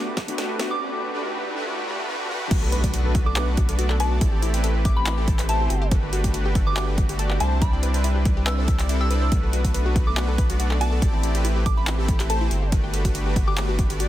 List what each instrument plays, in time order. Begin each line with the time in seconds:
Already playing: supersaw synth A3 D4 F#4 G4 B4, riser
0.17 kick, snare, closed hi-hat
0.27 synth pluck A3 B3 D4 F#4, supersaw synth A3 D4 F#4 G4 B4, closed hi-hat
0.38 snare, closed hi-hat
0.59 synth pluck A3 B3 D4 F#4, supersaw synth A3 D4 F#4 G4 B4, snare, closed hi-hat
0.71 synth bell D6
0.81 supersaw synth A3 D4 F#4 G4 B4
1.13 supersaw synth A3 D4 F#4 G4 B4
1.23 supersaw synth A3 D4 F#4 G4 B4
1.56 supersaw synth A3 D4 F#4 G4 B4
1.66 supersaw synth A3 D4 F#4 G4 B4, swell
1.87 supersaw synth A3 D4 F#4 G4 B4
2.08 supersaw synth A3 D4 F#4 G4 B4
2.30 supersaw synth A3 D4 F#4 G4 B4
2.51 sub bass B1, supersaw synth A3 B3 D4 F#4 B4, synth arpeggio sound F#4, kick, closed hi-hat, crash, impact
2.62 synth arpeggio sound A4
2.72 synth arpeggio sound B4, closed hi-hat
2.84 supersaw synth A3 B3 D4 F#4 B4, synth arpeggio sound D5, kick, closed hi-hat
2.94 synth arpeggio sound F#4, closed hi-hat
3.05 synth arpeggio sound A4
3.15 supersaw synth A3 B3 D4 F#4 B4, synth arpeggio sound F#4, kick, closed hi-hat
3.26 synth arpeggio sound A4, synth bell D6
3.36 supersaw synth A3 B3 D4 F#4 B4, synth arpeggio sound B4, clap, closed hi-hat
3.48 synth arpeggio sound D5
3.57 synth arpeggio sound F#4, kick, closed hi-hat
3.69 supersaw synth A3 B3 D4 F#4 D5, synth arpeggio sound A4, closed hi-hat
3.79 synth arpeggio sound F#4, closed hi-hat
3.90 synth arpeggio sound A4, clap
4.00 supersaw synth A3 B3 D4 F#4 D5, synth arpeggio sound B4, synth bell A5, closed hi-hat
4.11 synth arpeggio sound D5
4.21 sub bass A1, supersaw synth A3 C4 E4 G4 D5, synth arpeggio sound E4, kick, closed hi-hat
4.33 synth arpeggio sound G4
4.42 synth arpeggio sound E4, closed hi-hat
4.54 supersaw synth A3 C4 E4 G4 B4, synth arpeggio sound G4, closed hi-hat
4.64 synth arpeggio sound A4, closed hi-hat
4.75 synth arpeggio sound B4
4.85 supersaw synth A3 C4 E4 G4 B4, synth arpeggio sound E4, synth bell D6, kick, closed hi-hat
4.96 synth arpeggio sound G4, synth bell B5
5.06 synth arpeggio sound E4, clap, closed hi-hat
5.18 supersaw synth A3 C4 E4 G4 A4, synth arpeggio sound G4
5.28 synth arpeggio sound A4, kick, closed hi-hat
5.39 supersaw synth A3 C4 E4 G4 B4, synth arpeggio sound B4, clap, closed hi-hat
5.49 supersaw synth A3 C4 E4 G4 C5, synth arpeggio sound E4, synth bell A5, closed hi-hat
5.60 synth arpeggio sound G4
5.70 sub bass G1, synth arpeggio sound F#4, closed hi-hat
5.82 synth arpeggio sound G4
5.91 supersaw synth A3 D4 F#4 G4 B4, synth arpeggio sound A4, kick, closed hi-hat
6.03 synth arpeggio sound B4
6.13 synth arpeggio sound F#4, closed hi-hat
6.24 supersaw synth A3 D4 F#4 G4 B4, synth arpeggio sound G4, kick, closed hi-hat
6.34 synth arpeggio sound F#4, closed hi-hat
6.45 synth arpeggio sound G4
6.55 supersaw synth A3 D4 F#4 G4 B4, synth arpeggio sound A4, kick, closed hi-hat
6.67 synth arpeggio sound B4, synth bell D6
6.77 supersaw synth A3 D4 F#4 G4 B4, synth arpeggio sound F#4, synth bell D6, clap, closed hi-hat
6.88 synth arpeggio sound G4
6.98 synth arpeggio sound F#4, kick, closed hi-hat
7.09 supersaw synth A3 D4 F#4 G4 D5, synth arpeggio sound G4, closed hi-hat
7.19 synth arpeggio sound A4, closed hi-hat
7.30 synth arpeggio sound B4, clap
7.40 sub bass C2, supersaw synth G3 C4 D4 E4 C5, synth arpeggio sound E4, synth bell A5, closed hi-hat
7.52 synth arpeggio sound G4
7.62 supersaw synth G3 C4 D4 E4 D5, synth arpeggio sound E4, synth bell B5, kick, closed hi-hat
7.73 synth arpeggio sound G4
7.83 synth arpeggio sound B4, closed hi-hat
7.94 supersaw synth G3 C4 D4 E4 B4, synth arpeggio sound C5, closed hi-hat
8.04 synth arpeggio sound E4, closed hi-hat
8.16 synth arpeggio sound G4
8.25 supersaw synth G3 C4 D4 E4 B4, synth arpeggio sound E4, kick, closed hi-hat
8.37 synth arpeggio sound G4
8.47 synth arpeggio sound B4, synth bell E6, clap, closed hi-hat
8.58 supersaw synth G3 C4 D4 E4 A4, synth arpeggio sound C5
8.68 synth arpeggio sound E4, kick, closed hi-hat
8.79 supersaw synth G3 C4 D4 E4 D5, synth arpeggio sound G4, clap, closed hi-hat
8.89 supersaw synth G3 C4 D4 E4 A4, synth arpeggio sound E4, closed hi-hat
9.01 synth arpeggio sound G4, synth bell E6
9.11 supersaw synth G3 C4 D4 E4 D5, synth arpeggio sound B4, closed hi-hat
9.22 synth arpeggio sound C5
9.32 sub bass B1, supersaw synth A3 B3 D4 F#4 B4, synth arpeggio sound F#4, kick, closed hi-hat
9.43 synth arpeggio sound A4
9.53 synth arpeggio sound F#4, closed hi-hat
9.64 supersaw synth A3 B3 D4 F#4 B4, synth arpeggio sound A4, kick, closed hi-hat
9.74 synth arpeggio sound B4, closed hi-hat
9.86 synth arpeggio sound F#4
9.96 supersaw synth A3 B3 D4 F#4 B4, synth arpeggio sound F#4, kick, closed hi-hat
10.07 synth arpeggio sound A4, synth bell D6
10.17 supersaw synth A3 B3 D4 F#4 B4, synth arpeggio sound F#4, synth bell D6, clap, closed hi-hat
10.28 synth arpeggio sound A4
10.38 synth arpeggio sound B4, kick, closed hi-hat
10.49 supersaw synth A3 B3 D4 F#4 D5, synth arpeggio sound F#4, closed hi-hat
10.60 synth arpeggio sound F#4, closed hi-hat
10.71 synth arpeggio sound A4, clap
10.81 supersaw synth A3 B3 D4 F#4 D5, synth arpeggio sound F#4, synth bell A5, closed hi-hat
10.92 synth arpeggio sound A4
11.02 sub bass A1, supersaw synth A3 C4 E4 G4 D5, synth arpeggio sound A4, kick, closed hi-hat
11.13 synth arpeggio sound E4
11.23 synth arpeggio sound E4, closed hi-hat
11.35 supersaw synth A3 C4 E4 G4 B4, synth arpeggio sound G4, closed hi-hat
11.45 synth arpeggio sound E4, closed hi-hat
11.56 synth arpeggio sound G4
11.66 supersaw synth A3 C4 E4 G4 B4, synth arpeggio sound A4, synth bell D6, kick, closed hi-hat
11.77 synth arpeggio sound E4, synth bell B5
11.87 synth arpeggio sound E4, clap, closed hi-hat
11.99 supersaw synth A3 C4 E4 G4 A4, synth arpeggio sound G4
12.08 synth arpeggio sound E4, kick, closed hi-hat
12.20 supersaw synth A3 C4 E4 G4 B4, synth arpeggio sound G4, clap, closed hi-hat
12.30 supersaw synth A3 C4 E4 G4 C5, synth arpeggio sound A4, synth bell A5, closed hi-hat
12.41 synth arpeggio sound E4
12.51 sub bass G1, synth arpeggio sound F#4, closed hi-hat
12.62 synth arpeggio sound G4
12.72 supersaw synth A3 D4 F#4 G4 B4, synth arpeggio sound F#4, kick, closed hi-hat
12.84 synth arpeggio sound G4
12.94 synth arpeggio sound A4, closed hi-hat
13.05 supersaw synth A3 D4 F#4 G4 B4, synth arpeggio sound F#4, kick, closed hi-hat
13.15 synth arpeggio sound F#4, closed hi-hat
13.26 synth arpeggio sound G4
13.36 supersaw synth A3 D4 F#4 G4 B4, synth arpeggio sound F#4, kick, closed hi-hat
13.47 synth arpeggio sound G4, synth bell D6
13.57 supersaw synth A3 D4 F#4 G4 B4, synth arpeggio sound A4, synth bell D6, clap, closed hi-hat
13.69 synth arpeggio sound F#4
13.79 synth arpeggio sound F#4, kick, closed hi-hat
13.90 supersaw synth A3 D4 F#4 G4 D5, synth arpeggio sound G4, closed hi-hat
14.00 synth arpeggio sound F#4, closed hi-hat